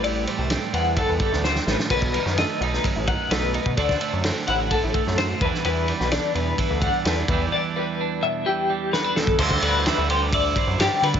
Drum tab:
CC |----------------|x---------------|----------------|----------------|
RD |x-x-x-x-x-x-----|x-x-x-x-x-x-x-x-|x-x-x-x-x-x-x-x-|x-x-x-x-x-x-x-x-|
SD |----o------ooooo|---oo--o----o---|-o--o------oo--o|---oo-------o---|
BD |--------o-o-----|oo------o-o----o|oo------o-o---o-|--------o-o---o-|

CC |----------------|x---------------|
RD |----------------|--x-x-x-x-x-x-x-|
SD |------------o-o-|----o-------o---|
BD |---------------o|oo------o-o----o|